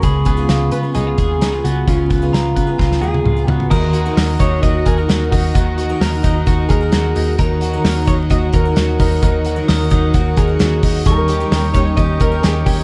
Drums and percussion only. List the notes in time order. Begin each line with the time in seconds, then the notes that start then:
0.03 kick, closed hi-hat
0.25 kick, closed hi-hat
0.49 snare, closed hi-hat
0.71 closed hi-hat
0.95 closed hi-hat
1.18 kick, closed hi-hat
1.41 snare, closed hi-hat
1.65 closed hi-hat
1.87 kick, closed hi-hat
2.10 kick, closed hi-hat
2.34 snare, closed hi-hat
2.57 kick, closed hi-hat
2.79 kick, snare
2.92 snare
3.14 high tom
3.25 mid tom
3.48 floor tom
3.60 floor tom
3.71 kick, crash
3.93 hi-hat pedal, open hi-hat
4.17 snare, hi-hat pedal, open hi-hat
4.39 kick, hi-hat pedal, open hi-hat
4.63 kick, hi-hat pedal, open hi-hat
4.86 kick, hi-hat pedal, open hi-hat
5.09 snare, hi-hat pedal, open hi-hat
5.32 kick, hi-hat pedal, open hi-hat
5.55 kick, hi-hat pedal, open hi-hat
5.78 hi-hat pedal, open hi-hat
6.01 snare, hi-hat pedal, open hi-hat
6.24 kick, hi-hat pedal, open hi-hat
6.47 kick, hi-hat pedal, open hi-hat
6.69 kick, hi-hat pedal, open hi-hat
6.92 snare, hi-hat pedal, open hi-hat
7.16 hi-hat pedal, open hi-hat
7.38 kick, hi-hat pedal, open hi-hat
7.61 hi-hat pedal, open hi-hat
7.84 snare, hi-hat pedal, open hi-hat
8.07 kick, hi-hat pedal, open hi-hat
8.30 kick, hi-hat pedal, open hi-hat
8.53 kick, hi-hat pedal, open hi-hat
8.76 snare, hi-hat pedal, open hi-hat
9.00 kick, hi-hat pedal, open hi-hat
9.23 kick, hi-hat pedal, open hi-hat
9.45 hi-hat pedal, open hi-hat
9.68 snare, hi-hat pedal, open hi-hat
9.90 kick, hi-hat pedal, open hi-hat
10.14 kick, hi-hat pedal, open hi-hat
10.37 kick, hi-hat pedal, open hi-hat
10.59 snare, hi-hat pedal, open hi-hat
10.83 kick, hi-hat pedal, open hi-hat
11.06 kick, hi-hat pedal, open hi-hat
11.28 hi-hat pedal, open hi-hat
11.52 snare, hi-hat pedal, open hi-hat
11.74 kick, hi-hat pedal, open hi-hat
11.97 kick, hi-hat pedal, open hi-hat
12.20 kick, hi-hat pedal, open hi-hat
12.43 snare, hi-hat pedal, open hi-hat
12.66 kick, hi-hat pedal, open hi-hat